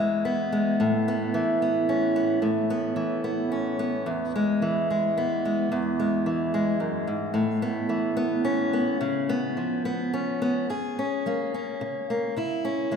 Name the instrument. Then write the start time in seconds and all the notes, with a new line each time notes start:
steel-string acoustic guitar
Already playing: E2 E3 G#3 B3
0.25 B3
0.52 G#3
0.80 A2
1.08 B3
1.34 E3
1.62 B3
1.89 C#4
2.16 B3
2.42 A2
2.70 B3
2.96 E3
3.24 B3
3.52 C#4
3.79 B3
4.06 E2
4.36 G#3
4.62 E3
4.90 G#3
5.17 B3
5.45 G#3
5.72 E2
6.00 G#3
6.26 E3
6.54 G#3
6.80 F#2
7.07 G#2
7.34 A2
7.62 B3
7.89 E3
8.17 B3
8.44 C#4
8.73 B3
9.01 C#3
9.29 B3
9.57 F3
9.85 B3
10.13 C#4
10.42 B3
10.70 F#2 G#4
10.99 C#4
11.26 F#3 A#3
11.54 C#4
11.81 C#3
12.10 A#3
12.37 C#3 E4
12.65 C#4
12.91 E3 G#3